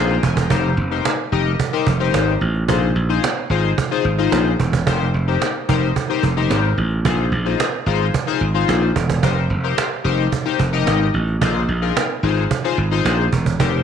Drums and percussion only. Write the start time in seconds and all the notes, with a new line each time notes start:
0.23 cajon bass
0.37 cajon bass
0.50 cajon bass
0.78 cajon slap
1.05 cajon slap
1.60 cajon bass
1.87 cajon bass
2.14 cajon slap
2.55 cajon slap
2.69 cajon bass
2.96 cajon slap
3.24 cajon slap
3.78 cajon bass
4.05 cajon slap
4.32 cajon slap
4.60 cajon bass
4.73 cajon bass
4.87 cajon bass
5.00 cajon slap
5.14 cajon slap
5.42 cajon slap
5.69 cajon bass
5.96 cajon bass
6.23 cajon bass
6.51 cajon slap
6.77 cajon slap
6.91 cajon slap
7.05 cajon bass
7.32 cajon slap
7.60 cajon slap
8.14 cajon bass
8.41 cajon slap
8.69 cajon slap
8.96 cajon bass
9.10 cajon bass
9.23 cajon bass
9.50 cajon slap
9.78 cajon slap
10.32 cajon bass
10.60 cajon bass
10.87 cajon slap
11.28 cajon slap
11.42 cajon bass
11.69 cajon slap
11.97 cajon slap
12.51 cajon bass
12.78 cajon slap
13.06 cajon slap
13.33 cajon bass
13.46 cajon bass
13.60 cajon bass
13.74 cajon slap